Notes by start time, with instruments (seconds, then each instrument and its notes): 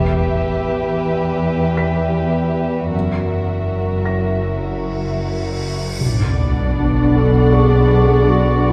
Already playing: double bass section E1, cello section E2, synth drone E2, violin section G4 B4 E5
1.77 grand piano B6
2.92 double bass section F#1, synth drone F#1, cello section F#2, violin section F#4 A#4 E5, cymbal swell
4.05 grand piano A#6
5.99 synth drone B1, double bass section B1, cello section B2, viola section D4, violin section D5 F#5 B5 D6, sub drop
6.78 clarinet D4, violin section C#6
7.16 clarinet A4
7.52 clarinet G#4, grand piano D5 C#6
8.30 clarinet F#4